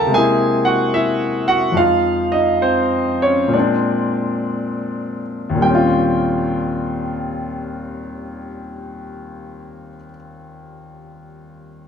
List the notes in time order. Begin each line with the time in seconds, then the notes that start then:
Already playing: D#2 C#3 G3 F4 G4 A4 A#4 F5 G5 A5 A#5
0.07 C3 G#3
0.12 A#3 C4 G#4 G#5
0.17 E4
0.65 F#4 F#5
0.94 E4 E5
1.48 F#4 F#5
1.72 F2 F3 G#3
1.77 D#4 F4 F5
2.32 D#4 D#5
2.62 C4 C5
3.22 C#4 C#5
3.48 A#2 G#3
3.53 C4 D4 D5
3.59 D4
5.50 D#2
5.55 A#2
5.60 G3 G5
5.64 C4
5.70 C#4
5.75 F4